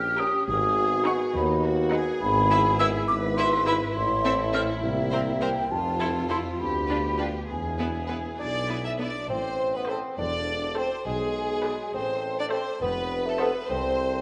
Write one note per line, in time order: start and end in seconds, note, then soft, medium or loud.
0.00 0.31 A#1 medium
0.00 0.47 C#4 medium
0.00 0.47 G4 medium
0.00 0.49 G4 medium
0.00 0.21 F6 medium
0.18 0.41 C#4 medium
0.18 0.40 A#4 medium
0.18 0.41 G5 medium
0.18 0.47 D#6 medium
0.48 1.18 G#1 medium
0.48 3.80 B3 medium
0.48 2.18 F#4 medium
0.48 1.34 G#4 medium
0.48 1.05 D#6 medium
1.06 1.27 D#4 medium
1.06 1.27 B4 medium
1.06 1.28 F#5 medium
1.06 1.12 C#6 loud
1.35 2.05 D#2 medium
1.35 1.65 D#4 medium
1.35 1.64 B5 medium
1.64 1.93 F#4 medium
1.92 2.14 D#4 medium
1.92 3.07 G#4 medium
1.92 2.14 B4 medium
1.92 2.14 F#5 medium
2.21 2.94 G#1 medium
2.21 2.95 G#1 medium
2.21 4.83 E4 medium
2.21 2.76 B5 loud
2.50 2.59 E4 medium
2.50 2.58 B4 medium
2.50 2.59 E5 medium
2.79 2.88 E4 medium
2.79 2.87 B4 medium
2.79 2.88 E5 medium
2.79 2.86 E6 loud
3.08 3.81 G#1 medium
3.08 3.82 G#1 medium
3.08 3.94 B4 medium
3.08 3.14 D6 loud
3.37 3.46 E4 medium
3.37 3.45 B4 medium
3.37 3.46 E5 medium
3.37 3.66 C6 loud
3.66 3.75 E4 medium
3.66 3.74 B4 medium
3.66 3.74 E5 medium
3.66 3.74 B5 loud
3.95 4.69 A1 medium
3.95 4.82 A3 medium
3.95 5.71 E4 medium
3.95 4.53 C6 loud
4.23 4.33 C4 medium
4.23 4.31 A4 medium
4.23 4.33 E5 medium
4.53 4.62 C4 medium
4.53 4.62 A4 medium
4.53 4.61 E5 medium
4.53 4.61 F6 loud
4.82 5.56 C2 medium
4.82 5.71 A#3 medium
4.82 5.69 G4 medium
4.82 5.44 E5 medium
5.11 5.21 C4 medium
5.11 5.19 A#4 medium
5.11 5.20 C5 medium
5.41 5.50 C4 medium
5.41 5.49 A#4 medium
5.41 5.49 C5 medium
5.41 5.73 G5 medium
5.70 6.45 F1 medium
5.70 6.45 F2 medium
5.70 6.57 C4 medium
5.70 7.49 F4 medium
5.70 6.58 F4 medium
5.70 6.29 A5 medium
6.00 6.08 E4 medium
6.00 6.08 A4 medium
6.00 6.09 C5 medium
6.28 6.38 E4 medium
6.28 6.36 A4 medium
6.28 6.37 C5 medium
6.28 6.37 C6 medium
6.59 7.35 D2 medium
6.59 9.00 B3 medium
6.59 7.50 G4 medium
6.59 7.18 B5 medium
6.88 6.98 D4 soft
6.88 6.98 F4 soft
6.88 6.96 B4 soft
7.18 7.27 D4 medium
7.18 7.27 F4 soft
7.18 7.26 B4 soft
7.18 7.26 G5 medium
7.49 8.25 E1 medium
7.49 8.24 E2 medium
7.49 8.97 E4 medium
7.49 8.82 G#4 medium
7.49 8.38 G#5 medium
7.78 7.88 B3 soft
7.78 7.87 E4 soft
7.78 7.86 B4 soft
8.07 8.17 B3 soft
8.07 8.17 E4 soft
8.07 8.15 B4 soft
8.39 9.15 B1 medium
8.39 9.15 B1 soft
8.39 8.87 D4 medium
8.39 8.81 D5 medium
8.68 8.77 B3 soft
8.68 8.77 E4 soft
8.68 8.76 B4 soft
8.84 8.99 E4 medium
8.84 8.90 E5 soft
8.98 9.07 B3 soft
8.98 9.29 D4 medium
8.98 9.08 E4 soft
8.98 9.06 B4 soft
8.98 9.30 D5 medium
9.29 10.01 A1 medium
9.29 10.01 A2 medium
9.29 9.77 C4 medium
9.29 10.14 C5 medium
9.29 9.73 C5 medium
9.74 9.90 B3 medium
9.74 9.89 B4 medium
9.88 10.18 C4 medium
9.88 10.11 A4 medium
9.88 10.10 C5 soft
9.88 10.11 C5 soft
9.88 9.97 C5 medium
10.17 10.88 E1 medium
10.17 10.89 E1 medium
10.17 10.89 E2 medium
10.17 10.76 D4 medium
10.17 11.06 A4 medium
10.17 10.76 D5 medium
10.76 10.90 C4 medium
10.76 10.98 A4 soft
10.76 10.98 C5 medium
10.76 10.99 C5 medium
10.76 11.06 C5 medium
11.06 11.77 B1 medium
11.06 11.77 B2 medium
11.06 11.92 G#3 medium
11.06 11.93 G#4 medium
11.64 11.87 G#4 medium
11.64 11.87 B4 medium
11.64 11.87 D5 medium
11.94 12.65 A1 medium
11.94 12.65 A2 medium
11.94 12.37 C4 medium
11.94 12.80 A4 medium
11.94 12.37 C5 medium
12.38 12.46 D4 medium
12.38 12.44 D5 medium
12.52 12.66 C4 medium
12.52 12.74 A4 medium
12.52 12.74 C5 medium
12.52 12.81 C5 medium
12.52 12.74 E5 soft
12.81 13.52 F1 medium
12.81 13.52 F2 medium
12.81 13.28 B3 medium
12.81 13.67 B4 medium
12.81 13.25 B4 medium
13.27 13.39 A3 medium
13.27 13.40 A4 medium
13.40 13.53 B3 medium
13.40 13.62 A4 medium
13.40 13.69 B4 medium
13.40 13.62 C5 medium
13.40 13.62 E5 medium
13.68 14.22 C2 medium
13.68 14.22 C4 medium
13.68 14.22 A4 medium
13.68 14.22 C5 medium